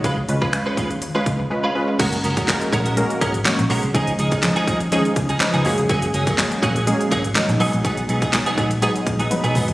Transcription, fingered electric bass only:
X:1
M:4/4
L:1/16
Q:1/4=123
K:F#
V:1 name="Fingered electric bass" clef=bass
C,,2 C,,3 z D,,3 z C,,2 z4 | F,,,2 F,,,3 z A,,,3 z G,,,2 z A,,, B,,, ^B,,, | C,,2 C,,3 z D,,3 z C,,2 z C,, F,,, E,,, | F,,,2 F,,,3 z A,,,3 z G,,,2 z A,,, B,,, A,,, |
z2 B,,,3 z A,,,3 z A,,,2 z B,,, =E,,, ^E,,, |]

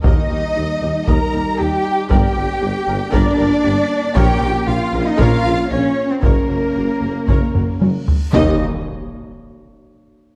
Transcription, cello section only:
X:1
M:4/4
L:1/16
Q:1/4=116
K:Eb
V:1 name="Cello section"
E8 B4 G4 | G8 D8 | G4 F3 E F4 _D3 C | B,12 z4 |
E2 z12 z2 |]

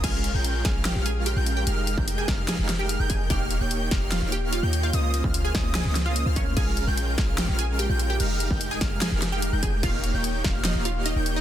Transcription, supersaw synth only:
X:1
M:4/4
L:1/16
Q:1/4=147
K:Fm
V:1 name="Supersaw synth"
[A,DFBf]3 [A,DFBg]3 [A,DFBf]3 [A,DFBf]4 [A,DFBg]3 | [A,EGBf]3 [A,EGB]3 [Ef]3 [A,EGBf]4 [A,EGBg]3 | [B,EGdf]3 [B,EGdg]3 G3 [B,EGdf]4 [B,EGdg]3 | [B,DFce]3 [B,DFcf]3 [B,DFce]3 [B,DFce]4 [B,DFcf]3 |
[A,DFBf]3 [A,DFBg]3 [A,FBf]3 [A,DFBf]4 [A,DFBg]3 | [A,EGBf]3 [A,E]3 [A,G]3 [A,EGBf]4 [A,EGBg]3 | [B,EGdf]3 [B,EGdg]3 [B,Gd]3 [B,EGdf]4 [B,EGdg]3 |]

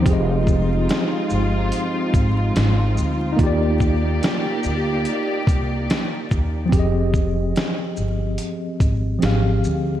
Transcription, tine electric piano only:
X:1
M:4/4
L:1/8
Q:"Swing 16ths" 1/4=72
K:Fdor
V:1 name="Tine electric piano"
[F,CGAe]8 | [B,EFGd]8 | [F,CGAe]6 [F,CGAf]2 |]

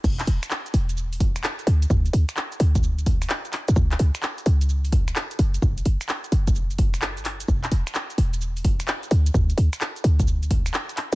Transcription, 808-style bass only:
X:1
M:4/4
L:1/16
Q:"Swing 16ths" 1/4=129
K:D
V:1 name="808-style bass" clef=bass
E,,, z E,,, z3 E,,,6 z2 D,, z | D,, z D,, z3 D,,6 z3 D,, | C,, z C,, z3 C,,6 z2 F,,, z | F,,, z F,,, z3 F,,,6- F,,, A,,, F,,, z |
E,,, z E,,, z3 E,,,6 z2 D,, z | D,, z D,, z3 D,,6 z4 |]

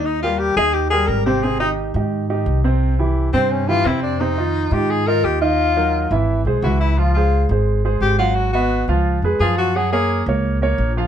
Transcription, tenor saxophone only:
X:1
M:4/4
L:1/8
Q:1/4=173
K:Eb
V:1 name="Tenor saxophone"
E F G A G A B G | [K:Ab] A E z6 | z3 C D F =E =D | E3 G A B G F- |
F4 z2 _G =E | F F2 z3 G F | _G G2 z3 A G | A A2 z4 z |]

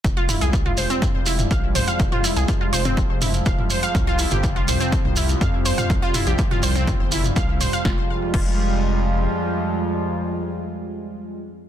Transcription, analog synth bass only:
X:1
M:4/4
L:1/16
Q:1/4=123
K:Fm
V:1 name="Analog synth bass" clef=bass
F,,,3 C,,3 F,,, z2 F,,,3 B,,,3 z | F,,, z2 C,, z2 F,,,3 F,,,3 F,,, z3 | C,,3 G,,,3 C,, z2 C,,3 F,,3 z | C,, z2 B,,, z2 C,,3 G,,,3 C,,3 z |
F,,, z3 F,,,8 z4 | z16 |]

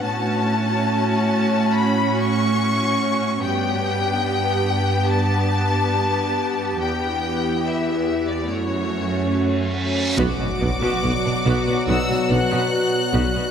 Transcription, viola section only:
X:1
M:4/4
L:1/16
Q:1/4=71
K:Bm
V:1 name="Viola section"
[CF]16 | [B,G]16- | [B,G]8 [A,F]6- [A,F] z | [B,F] [B,F] [B,D] [B,F] [B,F] [B,D] [B,F] [B,F] [B,F] [B,F] [B,D] [B,F] z2 [B,F] [B,F] |]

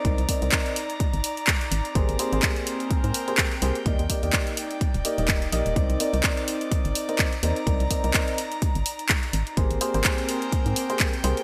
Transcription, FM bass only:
X:1
M:4/4
L:1/16
Q:"Swing 16ths" 1/4=126
K:Cm
V:1 name="FM bass" clef=bass
C,, C,, z C,, z4 z G,,, z4 A,,, z | A,,, A,,, z A,,, z4 z A,, z4 C,, z | E,, E,, z E,, z4 z E,,, z E,,,3 B,,, E,,, | C,, C,, z C,, z4 z G,,, z4 E,, z |
C,, C,, z C,, z4 z G,,, z4 A,,, z | A,,, A,,, z A,,, z4 z A,, z4 C,, z |]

